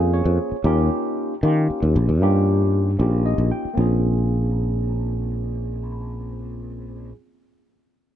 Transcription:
0.00 0.22 F2 medium
0.00 0.55 A#3 medium
0.00 0.55 C#4 medium
0.00 0.55 F4 medium
0.00 0.55 G#4 medium
0.00 0.55 C5 medium
0.14 0.62 C#5 medium
0.25 0.37 F2 medium
0.52 muted fretless electric bass stroke soft
0.64 0.88 D#2 medium
0.64 1.33 A#3 medium
0.64 1.33 C#4 medium
0.64 1.33 D#4 medium
0.64 1.33 F4 medium
0.64 1.34 G4 medium
1.43 1.66 D#3 medium
1.43 2.11 A#3 medium
1.43 2.12 C#4 medium
1.43 2.12 D#4 medium
1.43 2.12 F4 medium
1.43 2.12 G4 medium
1.70 muted fretless electric bass stroke soft
1.83 1.94 D#2 medium
1.96 2.07 A#1 medium
2.09 2.21 D#2 medium
2.21 2.95 G2 medium
2.21 2.90 A#3 medium
2.21 2.90 C#4 medium
2.21 2.90 D#4 medium
2.21 2.90 F4 medium
2.21 2.90 G4 medium
2.98 3.35 A#1 medium
2.98 3.67 A#3 medium
2.98 3.67 C#4 medium
2.98 3.68 D#4 medium
2.98 3.68 F4 medium
2.98 3.68 G4 medium
3.26 3.50 D#5 medium
3.38 3.50 A#1 medium
3.52 3.76 G5 medium
3.65 muted fretless electric bass stroke soft
3.74 7.12 A#1 medium
3.74 7.08 A#3 medium
3.74 7.09 C4 medium
3.74 7.11 C#4 medium
3.79 7.13 F4 medium
3.79 7.15 G#4 medium

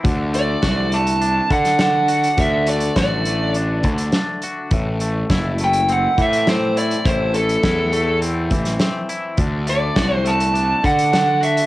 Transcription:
0.00 1.49 D3 medium
0.00 0.33 A3 medium
0.04 0.55 D2 medium
0.04 kick loud
0.04 closed hi-hat medium
0.33 0.93 A3 medium
0.33 0.94 D5 medium
0.33 closed hi-hat medium
0.62 1.39 C2 medium
0.62 2.07 F#4 medium
0.62 kick medium
0.62 snare loud
0.62 closed hi-hat medium
0.92 2.67 A3 medium
0.92 1.52 A5 loud
0.92 closed hi-hat soft
1.07 closed hi-hat medium
1.21 1.79 D4 medium
1.21 closed hi-hat medium
1.50 2.27 D3 medium
1.50 2.37 D3 medium
1.50 1.79 F#5 medium
1.50 kick medium
1.50 closed hi-hat medium
1.65 snare soft
1.65 closed hi-hat medium
1.79 3.26 D4 medium
1.79 2.40 F#5 medium
1.79 snare medium
1.79 closed hi-hat medium
2.08 2.96 F#4 medium
2.08 closed hi-hat medium
2.23 closed hi-hat medium
2.37 2.89 D2 medium
2.37 3.84 D3 medium
2.37 2.69 E5 medium
2.37 kick medium
2.37 closed hi-hat medium
2.67 3.26 A3 medium
2.67 2.96 D5 medium
2.67 closed hi-hat medium
2.80 closed hi-hat medium
2.96 3.84 A1 medium
2.96 4.42 F#4 medium
2.96 3.51 D5 medium
2.96 kick medium
2.96 snare medium
2.96 closed hi-hat medium
3.25 5.01 A3 medium
3.25 closed hi-hat medium
3.54 4.13 D4 medium
3.54 closed hi-hat medium
3.83 4.10 D2 medium
3.83 4.72 D3 medium
3.83 kick medium
3.83 closed hi-hat soft
3.98 closed hi-hat medium
4.12 4.72 D4 medium
4.12 snare medium
4.12 closed hi-hat medium
4.42 4.72 F#4 medium
4.42 closed hi-hat medium
4.71 5.22 A1 medium
4.71 6.18 A2 medium
4.71 kick loud
4.71 closed hi-hat medium
5.00 5.60 A3 medium
5.00 closed hi-hat medium
5.30 6.06 F#1 medium
5.30 6.76 E4 medium
5.30 kick medium
5.30 snare medium
5.30 closed hi-hat medium
5.58 7.34 A3 medium
5.58 closed hi-hat medium
5.64 5.92 G5 medium
5.73 closed hi-hat medium
5.88 6.47 C4 medium
5.88 6.20 F#5 medium
5.88 closed hi-hat soft
6.18 6.94 A2 medium
6.18 7.64 E3 medium
6.18 6.47 E5 medium
6.18 kick medium
6.18 closed hi-hat soft
6.33 closed hi-hat medium
6.47 7.93 C4 medium
6.47 6.78 C5 medium
6.47 snare medium
6.47 closed hi-hat medium
6.77 7.63 E4 medium
6.77 7.07 D5 medium
6.77 closed hi-hat medium
6.91 closed hi-hat medium
7.05 7.56 A1 medium
7.05 8.51 A2 medium
7.05 7.35 C5 medium
7.05 kick loud
7.05 closed hi-hat medium
7.34 7.92 A3 medium
7.34 8.18 A4 medium
7.34 closed hi-hat medium
7.49 closed hi-hat medium
7.63 8.53 E2 medium
7.63 9.08 E4 medium
7.63 kick medium
7.63 snare loud
7.63 closed hi-hat medium
7.93 9.66 A3 medium
7.93 closed hi-hat medium
8.22 8.80 C4 medium
8.22 closed hi-hat medium
8.51 8.77 A1 medium
8.51 9.39 E3 medium
8.51 kick medium
8.51 closed hi-hat medium
8.65 snare soft
8.65 closed hi-hat medium
8.79 9.39 C4 medium
8.79 snare loud
8.79 closed hi-hat medium
9.09 9.39 E4 medium
9.09 closed hi-hat medium
9.37 9.89 D2 medium
9.37 10.82 D3 medium
9.37 kick medium
9.37 closed hi-hat medium
9.67 10.23 A3 medium
9.67 10.16 D5 medium
9.67 closed hi-hat medium
9.96 10.73 C2 medium
9.96 11.40 F#4 medium
9.96 kick medium
9.96 snare loud
9.96 closed hi-hat medium
10.16 10.29 C5 medium
10.25 11.66 A3 medium
10.25 10.85 A5 loud
10.25 closed hi-hat soft
10.40 closed hi-hat medium
10.54 11.11 D4 medium
10.54 closed hi-hat medium
10.84 11.66 D3 medium
10.84 11.60 D3 medium
10.84 11.12 F#5 medium
10.84 kick medium
10.84 closed hi-hat soft
10.99 closed hi-hat medium
11.13 11.66 D4 medium
11.13 11.44 F#5 medium
11.13 snare medium
11.13 closed hi-hat medium
11.41 11.66 F#4 medium
11.41 11.66 E5 medium
11.41 closed hi-hat medium
11.57 closed hi-hat medium

